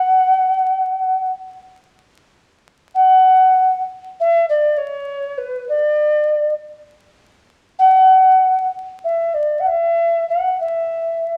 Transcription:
Already playing: F#5
2.94 F#5
4.20 E5
4.49 D5
4.77 C#5
5.38 B4
5.68 D5
7.79 F#5
9.04 E5
9.34 D5
9.60 F#5
9.67 E5
10.29 F#5
10.60 E5

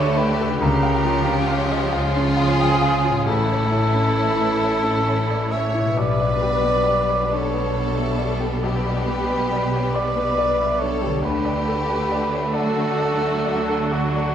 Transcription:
Already playing: D2 D3 A3 D4 F#4 A4 C#5 D5 E5 F#5
0.17 G4 B4 D5
0.40 C#3 A4
0.48 C#4
0.52 F4
0.57 C#2 G4 F5
0.62 C#3 A#4
0.83 F5
1.04 F3 C#4 F4
1.27 C#4
1.48 F5
1.72 D#5
1.92 C#2 C#3 F4 G#4 F5
2.16 C#4
2.37 F3 C#4 F4 F5
2.60 G5
2.81 F5
3.04 F4
3.09 A2
3.13 C#4
3.18 E4
3.22 A1 E4 C#5
3.27 A2 E3 A3 C#4 A4
3.49 C#5
3.70 E3 A3 C#4 E4
3.94 C#4
4.16 C#5
4.39 B4
4.59 A1 A2 C#5
4.82 C#4
5.05 E3 A3 C#4 C#5
5.30 D5
5.51 C#5 E5
5.74 E4
5.80 B2
5.85 B3
5.89 G4
5.94 B1 G3 D4 B4
5.98 B2 B3 D4 D5
6.20 D5
6.42 G4
6.63 B3
6.86 D5
7.10 C#5
7.31 D4 A4 C#5
7.53 B3
7.74 D4
7.96 E5
8.18 D5
8.40 G4
8.63 B1 G4 B4
8.86 D5
9.08 G4
9.30 B3
9.52 D5
9.74 C#5
9.92 B4 D5
10.16 B3
10.38 D5
10.59 E5
10.80 D4 A4 C#5
11.02 G4
11.06 D3 A3
11.15 A4
11.19 D2 D3 A3 D4 G4 D5
11.25 B4
11.45 D5
11.68 A4
11.90 A3
12.11 D5
12.32 C#5
12.53 F#3 F#4 A4 D5
12.76 A3
12.99 D5
13.21 E5
13.45 D5
13.69 A4
13.91 D2 D4 F#4
14.16 D5

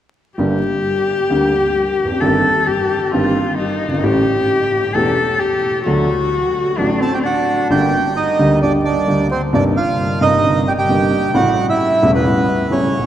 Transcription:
0.38 G1 G2 D3 G3 A#3 G4
1.30 D2 D3 G3 A#3 G4
2.04 E2
2.10 F2
2.15 F#2
2.21 G1 G2 D#3 A#3 C4 G4 A4
2.67 G4
3.06 G4
3.12 G1 G2 D#3 A#3 C4 F4 G4
3.58 D#4
3.87 F#1
3.93 G1
3.98 G#1
4.03 A1 A2 E3 A3 C#4 G4
4.95 E1 E2 E3 A3 C#4 G4 A4
5.40 G4
5.86 D2 D3 F#3 A3 D4 F#4 A4
6.78 A1 A2 F#3 A3 D4 A4
7.00 C4 A4 A5
7.14 G4 G5
7.23 D4 F#4 F#5
7.70 G1 G2 D3 G3 A#3 G4 G5
8.16 D#4 D#5
8.39 D2 D3 G3 A#3 G4
8.62 G1 G2 D3 G3 A#3 D4 G4 D5
8.85 D4 D5
9.08 D2 D3 G3 A#3 G4
9.31 C4 C5
9.53 G1 G2 C3 G3 A#3 D4 D#4 D5
9.77 F4 F5
10.21 G1 G2 C3 G3 A#3 D#4 D#5
10.43 G1 G2 C3 G3 A#3 D#4
10.68 G4 G5
10.78 G4 G5
10.89 G1 G2 C3 G3 A#3 D#4
11.34 A1 A2 C#3 G3 A3 E4 F#4 F#5
11.69 E4 E5
12.02 E1 E2 C#3 G3 A3 E4
12.15 B3 B4
12.25 A1 A2 C#3 G3 A3 E4
12.70 E1 E2 C#3 G3 A3 C#4 E4 C#5
12.99 B1

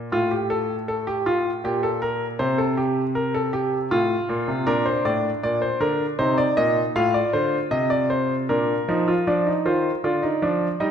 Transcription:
0.12 A2 F4
0.31 G4
0.50 A4
0.88 A4
1.07 G4
1.26 F4
1.64 A#2 G4
1.83 A4
2.02 A#4
2.39 C3 C5
2.58 A4
2.77 G4
3.15 A#4
3.34 A4
3.53 G4
3.91 A2 F4
4.29 A#2
4.48 C3
4.66 A#2 D4 A#4
4.86 C5
5.05 A2 D5
5.43 A#2 D5
5.62 C5
5.80 D3 A#4
6.19 C3 D#4 C5
6.38 D5
6.57 A#2 D#5
6.96 A2 F4 F5
7.14 D5
7.33 D3 C5
7.71 C3 D#5
7.90 D5
8.10 C5
8.49 A#2 D4 A#4
8.88 F3 D#4
9.08 F4
9.27 F3 D4 D5
9.46 D#4
9.65 D#3 F4 C5
10.04 D3 F4 D5
10.22 D#4
10.42 F3 D4
10.80 G3 D#4 D#5

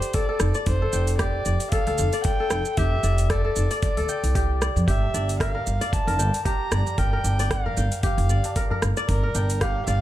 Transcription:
Already playing: G4 A4 C5 D5 G5
0.02 open hi-hat, shaker
0.14 A4 D5, kick, open hi-hat, shaker
0.29 A4
0.40 F1, cross-stick, shaker
0.54 D5, shaker
0.66 F1 C5, kick, open hi-hat, shaker
0.82 A4
0.93 F1 G5, open hi-hat, shaker
1.07 open hi-hat, shaker
1.19 G4 D5, kick, cross-stick, open hi-hat, shaker
1.45 F1 D5, shaker
1.60 open hi-hat, shaker
1.72 A4 F5, kick, open hi-hat, shaker
1.87 D2 A4, open hi-hat
1.98 F1, shaker
2.13 D5, open hi-hat, shaker
2.24 G5, kick, open hi-hat, shaker
2.40 A4
2.51 F1 G5, cross-stick, shaker
2.65 shaker
2.77 F1 G4 E5, kick, open hi-hat, shaker
3.03 F1 D5, open hi-hat, shaker
3.18 open hi-hat, shaker
3.30 A4 D5, kick, cross-stick, open hi-hat, shaker
3.45 A4
3.56 F1, shaker
3.71 D5, open hi-hat, shaker
3.82 D5, kick, open hi-hat, shaker
3.97 D2 A4, open hi-hat
4.09 G5, shaker
4.23 C2, open hi-hat, shaker
4.35 G4, kick, open hi-hat, shaker
4.62 D5, cross-stick, shaker
4.76 F2, shaker
4.88 G1 G4 E5, kick, open hi-hat, tabla na, shaker
5.03 tabla tin
5.14 G1 D5, open hi-hat, tabla na, shaker
5.29 open hi-hat, shaker
5.40 A#4 F5, kick, cross-stick, open hi-hat, shaker
5.55 A#4, tabla tin
5.67 G1, shaker
5.81 D5, open hi-hat, shaker
5.93 A5, kick, open hi-hat, shaker
6.07 F1 A#4, open hi-hat
6.19 G1 G5, tabla na, shaker
6.34 open hi-hat, shaker
6.45 G4 A#5, kick, open hi-hat, shaker
6.71 G1 D5, cross-stick, tabla na, tabla ge, shaker
6.86 tabla tin, shaker
6.98 G1 A#4 G5, kick, open hi-hat, tabla na, shaker
7.13 A#4, tabla tin
7.24 G1, open hi-hat, tabla na, shaker
7.39 D5, open hi-hat, shaker
7.51 F5, kick, cross-stick, open hi-hat, shaker
7.66 A#4, tabla tin, tabla ge
7.77 G1 G5, shaker
7.92 open hi-hat, shaker
8.03 G4 F5, kick, open hi-hat, tabla ge, shaker
8.18 F1, open hi-hat
8.29 G1 D5, tabla tin, shaker
8.44 open hi-hat, tabla na, shaker
8.56 A#4, kick, open hi-hat, shaker
8.70 A#4, tabla na, tabla tin, tabla ge
8.82 G1, cross-stick, shaker
8.96 D5, tabla na, tabla tin, shaker
9.08 G1 A#4, kick, open hi-hat, tabla na, shaker
9.23 A#4, tabla tin
9.35 G1 G5, open hi-hat, tabla na, shaker
9.50 open hi-hat, shaker
9.61 G4 F5, kick, cross-stick, open hi-hat, shaker
9.75 tabla tin
9.87 G1 D5 F5, shaker

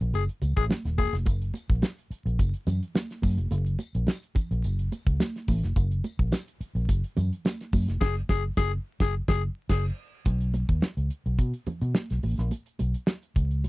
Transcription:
0.01 A#1, closed hi-hat
0.14 F#1 G#4, closed hi-hat, tambourine, muted conga
0.29 closed hi-hat
0.42 C#2, closed hi-hat, tambourine, muted conga
0.57 A1 G#4, kick, closed hi-hat
0.69 snare, tambourine, high conga
0.85 D#1, snare, closed hi-hat
0.98 E1 G#4, kick, open hi-hat, tambourine, high conga
1.13 F1, snare, closed hi-hat
1.26 F#1, kick, closed hi-hat, tambourine, muted conga
1.42 closed hi-hat
1.54 closed hi-hat, tambourine, muted conga
1.70 A#1, kick, closed hi-hat
1.82 snare, tambourine, high conga
1.98 closed hi-hat
2.10 muted fingered electric bass stroke, closed hi-hat
2.26 A#1, closed hi-hat
2.39 F#1, kick, closed hi-hat, tambourine, muted conga
2.54 closed hi-hat
2.67 F#2, closed hi-hat, tambourine, muted conga, low conga
2.83 closed hi-hat
2.95 snare, tambourine, high conga
3.10 snare, closed hi-hat
3.22 F#2, kick, open hi-hat, tambourine, high conga
3.37 F1, closed hi-hat
3.51 F#1, closed hi-hat, muted conga
3.66 closed hi-hat
3.79 closed hi-hat, tambourine, muted conga
3.95 A#1, closed hi-hat
4.07 snare, tambourine, high conga
4.23 closed hi-hat
4.35 muted fingered electric bass stroke, kick, closed hi-hat, tambourine, low conga
4.51 A#1, closed hi-hat
4.64 F#1, closed hi-hat, tambourine
4.79 closed hi-hat
4.92 closed hi-hat, tambourine, muted conga
5.07 C#2, kick, closed hi-hat
5.20 snare, tambourine, high conga
5.36 snare, closed hi-hat
5.48 A1, kick, open hi-hat, tambourine, high conga
5.63 F1, snare, closed hi-hat
5.76 F#1, kick, closed hi-hat, tambourine, muted conga
5.91 closed hi-hat
6.04 closed hi-hat, tambourine, muted conga
6.19 A#1, kick, closed hi-hat
6.32 snare, tambourine, high conga
6.48 closed hi-hat
6.61 muted fingered electric bass stroke, closed hi-hat
6.75 A#1, closed hi-hat
6.89 F#1, kick, closed hi-hat, tambourine, muted conga
7.04 closed hi-hat
7.17 F#2, closed hi-hat, tambourine, muted conga, low conga
7.33 closed hi-hat
7.45 snare, tambourine, high conga
7.61 snare, closed hi-hat
7.73 F#2, kick, open hi-hat, tambourine, high conga
7.88 F1, snare, closed hi-hat
8.01 F#1 G#4, kick, snare, crash
8.29 F#1 G#4, kick, snare
8.57 F#1 G#4, kick, snare
9.00 F#1 G#4, kick, snare
9.28 F#1 G#4, kick, snare
9.69 F#1 G#4, kick, snare, crash
10.25 B1, kick, closed hi-hat, muted conga
10.41 closed hi-hat
10.54 closed hi-hat, muted conga
10.69 D#2, kick, closed hi-hat
10.82 muted fingered electric bass stroke, snare, high conga
10.97 C#2, closed hi-hat
11.10 closed hi-hat
11.26 B1, closed hi-hat
11.39 B2, kick, closed hi-hat
11.54 closed hi-hat
11.66 muted fingered electric bass stroke, closed hi-hat, muted conga, low conga
11.81 B2, closed hi-hat
11.95 snare, high conga
12.10 B1, snare, closed hi-hat
12.23 A1, open hi-hat, high conga
12.38 A#1, snare, closed hi-hat
12.51 closed hi-hat, muted conga
12.66 closed hi-hat
12.79 B1, closed hi-hat, muted conga
12.94 closed hi-hat
13.07 snare, high conga
13.23 closed hi-hat
13.36 C#2, kick, closed hi-hat
13.51 closed hi-hat
13.64 B1, closed hi-hat, muted conga

